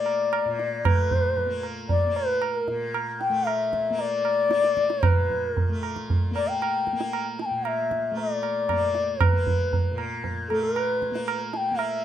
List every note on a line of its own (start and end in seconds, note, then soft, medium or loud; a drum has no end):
0.00 0.45 A#2 medium
0.00 0.84 A3 medium
0.00 1.46 A#3 medium
0.00 0.87 D5 medium
0.06 tabla na medium
0.33 tabla na medium
0.45 2.67 A#2 medium
0.59 tabla te medium
0.84 3.29 A3 soft
0.84 1.64 B4 medium
0.84 tabla na loud
0.84 tabla ge medium
1.11 tabla ge medium
1.37 tabla tin medium
1.37 tabla ge medium
1.46 2.07 A#3 medium
1.63 tabla na medium
1.89 2.18 D5 medium
1.89 tabla tin medium
1.89 tabla ge medium
2.07 3.90 A#3 medium
2.16 2.45 B4 medium
2.16 tabla na medium
2.42 2.56 B4 medium
2.42 tabla na medium
2.56 2.96 A#4 medium
2.67 5.10 A#2 medium
2.67 tabla te medium
2.94 tabla na medium
3.21 3.49 G5 medium
3.21 tabla te medium
3.29 5.69 A3 medium
3.47 4.02 E5 medium
3.47 tabla na medium
3.73 tabla ke medium
3.90 4.49 A#3 medium
3.99 5.07 D5 loud
3.99 tabla tin medium
4.25 tabla na medium
4.49 6.31 A#3 medium
4.49 tabla te medium
4.64 tabla te medium
4.77 tabla ke medium
4.90 tabla te medium
5.03 5.50 B4 medium
5.03 tabla na loud
5.03 tabla ge medium
5.11 7.50 A#2 medium
5.30 tabla ge medium
5.50 5.83 A#4 medium
5.57 tabla tin medium
5.57 tabla ge medium
5.69 8.11 A3 medium
5.83 tabla na medium
5.96 tabla ke medium
6.10 tabla tin medium
6.10 tabla ge medium
6.31 6.93 A#3 medium
6.36 6.50 D5 medium
6.36 tabla na medium
6.48 7.26 G5 medium
6.62 tabla na medium
6.87 tabla ke medium
6.93 8.72 A#3 medium
7.01 tabla te medium
7.13 tabla na medium
7.39 7.47 A5 medium
7.39 tabla te medium
7.46 7.69 G5 medium
7.51 9.91 A#2 medium
7.65 8.18 E5 medium
7.65 tabla na medium
7.91 tabla ke medium
8.11 10.51 A3 medium
8.17 9.24 D5 medium
8.17 tabla tin medium
8.43 tabla na medium
8.69 9.33 A#3 soft
8.69 tabla na medium
8.69 tabla ge medium
8.95 tabla te medium
9.21 10.00 B4 medium
9.21 tabla na loud
9.21 tabla ge medium
9.33 11.11 A#3 medium
9.47 tabla ge medium
9.73 tabla tin medium
9.73 tabla ge medium
9.91 12.05 A#2 medium
9.98 tabla na medium
10.24 tabla tin medium
10.24 tabla ge medium
10.49 12.05 A3 medium
10.49 10.65 A4 medium
10.49 tabla na medium
10.63 11.41 B4 medium
10.76 tabla na medium
11.02 tabla ke medium
11.11 11.71 A#3 medium
11.15 tabla te medium
11.28 tabla na medium
11.53 11.81 G5 medium
11.53 11.58 A5 medium
11.53 tabla te medium
11.71 12.05 A#3 medium
11.79 12.05 E5 medium
11.79 tabla na medium